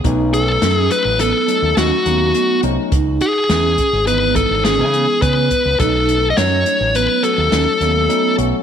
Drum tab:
HH |xxxxxxxxxx|xxxxxxxxxx|xxxxxxxxxx|
SD |--o---o---|--o---o-o-|--o---oo--|
BD |o---------|o--o-o--oo|o---------|